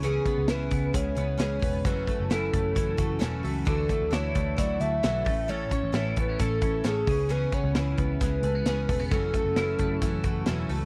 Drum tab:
HH |xxxxxxxo|xxxxxxxo|xxxxxxxo|xxxxxxxo|
SD |--o---o-|--o---o-|--o-o-o-|--o---o-|
BD |-o-oo--o|oo-ooo--|oo-oo--o|-o-ooo-o|

HH |xxxxxxxo|xxxxxxxo|
SD |--o-o-o-|--o-o-o-|
BD |-o-oo--o|oo-ooo--|